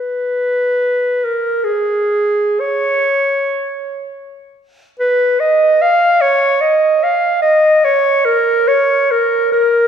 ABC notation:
X:1
M:3/4
L:1/8
Q:1/4=74
K:C#dor
V:1 name="Clarinet"
B3 A G2 | c4 z2 | [K:A#phr] B d e c d e | d c A c A A |]